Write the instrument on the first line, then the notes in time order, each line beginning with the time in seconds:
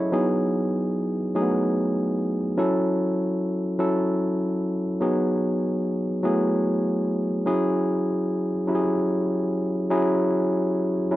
tine electric piano
Already playing: F#3 C#4 F#4 G#4 A4 C#5 D#5 E5
0.00 E4
0.12 F#3 B3 D#4 G#4
1.35 F#3 A3 D#4 G#4
1.42 B3
2.57 F#3 C#4 E4 A4
3.79 F#3 C#4 E4 A4
5.01 F#3 B3 D#4 G#4
6.23 F#3 A3 B3 E4 G#4
7.46 F#3 C#4 E4 G#4
8.67 F#3 C#4 E4 G4
8.75 G#4
9.90 F#3 C#4 E4 G#4
11.11 F#3 C#4 E4 F#4